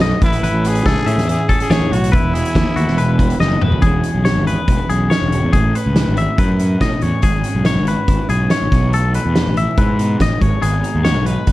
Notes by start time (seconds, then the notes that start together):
Already playing: B1 F#2 F#3 D#4
0.00 A3 D#5, snare, closed hi-hat
0.21 A1 A2 E4 B4, kick, closed hi-hat
0.33 closed hi-hat
0.43 A1 E3 B4, closed hi-hat
0.53 A1
0.64 C#4 G#4, closed hi-hat
0.75 closed hi-hat
0.86 C#2 E4 G#4 A4, kick, snare, closed hi-hat
1.06 A2 E3 E5, closed hi-hat
1.16 E2, snare, closed hi-hat
1.28 E3 G#4, closed hi-hat
1.49 C#4 A4, kick, closed hi-hat
1.60 G#4, closed hi-hat
1.70 A1 E4 C#5, snare, closed hi-hat
1.80 E2
1.91 B1 A2 F#4, closed hi-hat
2.04 closed hi-hat
2.12 E1 E2 E4 B4, kick, closed hi-hat
2.23 E1
2.34 E3 G#4, closed hi-hat
2.45 closed hi-hat
2.55 D#2 A3, kick, snare, closed hi-hat
2.66 B3
2.76 D#2 A3 F#4, closed hi-hat
2.87 E1 B3, snare
2.98 B2 B4, closed hi-hat
3.19 E3, kick, closed hi-hat
3.30 closed hi-hat
3.40 F#1 A3 D#5, snare
3.52 B3
3.62 E1 E4 B4, mid tom
3.72 floor tom
3.82 E1 E2 E3 G#4, kick, closed hi-hat
3.86 C#4 E4 G#4
4.03 C#4, closed hi-hat
4.14 B1
4.25 E4 C#5, snare, closed hi-hat
4.35 G#1
4.47 G#4 B4, closed hi-hat
4.68 E1 E4, kick, closed hi-hat
4.89 B1 C#4 G#4, closed hi-hat
5.10 F#2 C#5, snare, closed hi-hat
5.21 E1
5.32 G#2, closed hi-hat
5.44 E2
5.53 A1 A2 G#4, kick, closed hi-hat
5.75 C#4 B4, closed hi-hat
5.86 C#2
5.96 E4, snare, closed hi-hat
6.07 G#1
6.17 G#4 E5, closed hi-hat
6.38 F#2 E4 B4, kick, closed hi-hat
6.59 C#4, closed hi-hat
6.81 A2 B2 D#5, kick, snare, closed hi-hat
7.01 E2 A2 C#5, closed hi-hat
7.22 G#1 G#2 G#4, kick, closed hi-hat
7.44 C#4, closed hi-hat
7.55 B1
7.65 E4 C#5, snare, closed hi-hat
7.76 G#1
7.87 F#4 B4, closed hi-hat
8.08 G#1 E4, kick, closed hi-hat
8.29 B1 C#4 G#4, closed hi-hat
8.50 E3 C#5, snare, closed hi-hat
8.62 A1
8.72 B1 B2, kick, snare, closed hi-hat
8.93 A3 A4, closed hi-hat
9.14 E4 B4, closed hi-hat
9.25 E2
9.36 A4, snare, closed hi-hat
9.47 A1
9.57 E4 E5, closed hi-hat
9.77 G#2 B4, kick, closed hi-hat
9.99 B2, closed hi-hat
10.20 A1 A2 D#5, kick, snare, closed hi-hat
10.40 G#1 G#2 C#5, kick, closed hi-hat
10.62 G#1 B3 G#4, closed hi-hat
10.83 D#4, closed hi-hat
10.95 D#2
11.05 F#4 C#5, snare, closed hi-hat
11.16 B1
11.26 D#4 B4, closed hi-hat
11.47 G#1 B3, kick, closed hi-hat